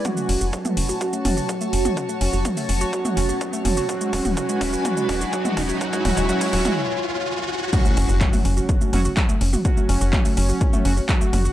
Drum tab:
CC |----------------|----------------|----------------|----------------|
HH |--o---o---o---o-|--o--oo---o---o-|--o---o---o---o-|--o--oo---------|
SH |xx-xxx-xxx-xxx-x|xx-xxx-xxx-xxx-x|xx-xxx-xxx-xxx-x|xx-xxx-x--------|
CP |----------------|----------------|----------------|----------------|
T2 |o----o----o----o|----o----o----o-|---o----o----o--|--o----o--------|
BD |o---o---o---o---|o---o---o---o---|o-o-o-o-o-o-o-o-|oooooooo--------|

CC |x---------------|----------------|
HH |--o--oo---o---o-|--o--oo---o---o-|
SH |xx-xxx-xxx-xxx-x|xx-xxx-xxx-xxx-x|
CP |----x-------x---|----x-------x---|
T2 |o----o----o----o|----o----o----o-|
BD |o---o---o---o---|o---o---o---o---|